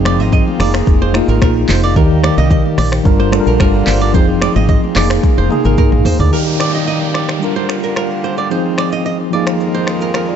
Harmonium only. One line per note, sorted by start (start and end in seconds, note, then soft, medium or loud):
0.00 3.02 D#3 medium
0.00 1.94 G#3 medium
0.00 0.59 C4 medium
0.00 1.93 F4 medium
0.60 4.11 A#3 medium
1.96 4.12 G3 medium
1.96 3.04 G4 medium
3.06 4.13 D3 medium
3.06 6.29 F4 medium
4.15 6.31 D#3 medium
4.15 6.30 G#3 medium
4.15 4.96 C4 medium
4.96 6.31 A#3 medium
6.32 7.40 D#3 medium
6.32 7.40 G3 medium
6.32 8.48 A#3 medium
6.32 7.40 G4 medium
7.42 8.50 D3 medium
7.42 8.50 G3 medium
7.42 9.31 F4 medium
8.51 10.36 D#3 medium
8.51 9.31 G#3 medium
8.51 9.32 C4 medium
9.33 10.36 F2 medium
9.33 10.36 G#3 medium
9.33 10.36 A#3 medium
9.33 10.36 F4 medium